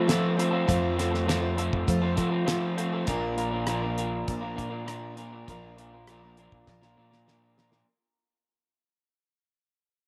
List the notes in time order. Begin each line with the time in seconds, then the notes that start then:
Already playing: F3
0.07 F3 A3 C4 F4 A4 C5, snare, closed hi-hat
0.37 A3 C4 F4 A4 C5, closed hi-hat
0.51 C4 F4 A4
0.67 F2 F3 A3 C4 F4 A4 C5, kick, closed hi-hat
0.97 A3 C4 F4 A4, snare, closed hi-hat
1.12 C4 F4 A4, snare
1.26 F3 A3 C4 F4 A4, snare, closed hi-hat
1.32 C5
1.41 C4 F4 A4
1.56 A3 C4 F4 A4, closed hi-hat
1.73 F2, kick
1.87 F2 F3 A3 C4 F4 C5, kick, closed hi-hat
2.02 C4 F4 A4
2.16 F3 A3 C4 F4 A4, kick, closed hi-hat
2.31 C4 F4 A4
2.46 F3 A3 C4 F4 A4, snare, closed hi-hat
2.50 C5
2.76 A3 C4 F4 A4 C5, closed hi-hat
2.93 C4 F4 A4
3.06 A#1 A#2 F3 A#3 D4 F4 A#4, kick, closed hi-hat
3.37 A#3 D4 F4 A#4, closed hi-hat
3.51 A#3 D4 F4 A#4
3.66 A#2 F3 A#3 D4 F4 A#4, cross-stick, closed hi-hat
3.82 A#3 D4 F4 A#4
3.97 A#3 D4 F4 A#4, closed hi-hat
4.28 A#1 A#2 F3 A#3 D4 F4 A#4, kick, closed hi-hat
4.41 A#3 D4 F4 A#4
4.55 A#2 A#3 D4 F4 A#4, kick, closed hi-hat
4.70 A#3 D4 F4 A#4
4.85 A#2 F3 A#3 D4 F4 A#4, cross-stick, closed hi-hat
4.92 A#4
5.16 A#3 D4 F4 A#4, closed hi-hat
5.21 A#3 D4
5.32 A#3 D4 F4 A#4
5.47 A#1 A#2 F3 A#3 D4 F4 A#4, kick, closed hi-hat
5.77 A#3 D4 F4 A#4, closed hi-hat
5.93 A#3 D4 F4 A#4
6.07 A#2 F3 A#3 D4 F4 A#4, cross-stick, closed hi-hat
6.23 A#3 D4 F4 A#4
6.37 A#3 D4 F4 A#4, closed hi-hat
6.52 A#1, kick
6.67 A#1 A#2 F3 A#3 D4 F4 A#4, kick, snare
6.81 A#3 D4 F4 A#4, snare
6.97 A#2 A#3 D4 F4 A#4
7.11 A#3 D4 F4 A#4, snare
7.26 A#2 F3 A#3 D4 F4 A#4, snare
7.57 A#3 D4 F4 A#4, snare
7.61 A#3
7.72 A#3 D4 F4 A#4, snare